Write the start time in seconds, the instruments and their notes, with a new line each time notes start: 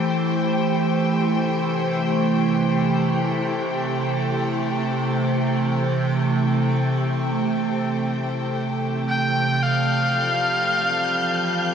Already playing: ambient pad E3 A3 G4 C5, violin section G4 G5
1.12 ambient pad C3
9.09 electric violin G5
9.62 ambient pad F3, violin section G3 G6, electric violin F5
10.00 ambient pad F5
10.27 ambient pad C4
10.37 ambient pad A4